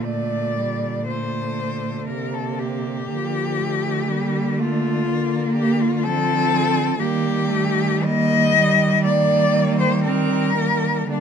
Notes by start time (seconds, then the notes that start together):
Already playing: A#2 D3
0.03 A3 D5
0.58 G3
1.07 A3 C5
2.08 C3 A#3 A#4
2.33 A4
2.59 G4
3.09 D3 F3 A#3
3.59 A3
4.09 G3 A#3
4.59 A3 F4
5.07 A#3
5.56 G4
5.81 F4
6.03 F3 C4 A4
6.99 D#3 G3 A#3 G4
7.52 A3
8.04 G3 A#3 D#5
8.55 G3
9.05 A#3 D5
9.80 C5
10.05 C4 A#4
10.58 A#3
11.08 D3 G3 A#3 D4